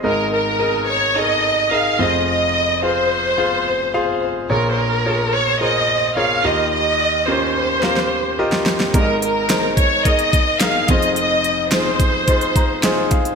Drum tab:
HH |----------------|----------------|----------------|----------------|
SD |----------------|----------------|----------------|--------oo---ooo|
BD |----------------|----------------|----------------|----------------|

HH |x-x-x-x-xxx-x-xx|x-x-x-x-xxx-x-xx|
SD |----o-------o---|----o-------o---|
BD |o-----o-o-o---o-|------o-o-o---o-|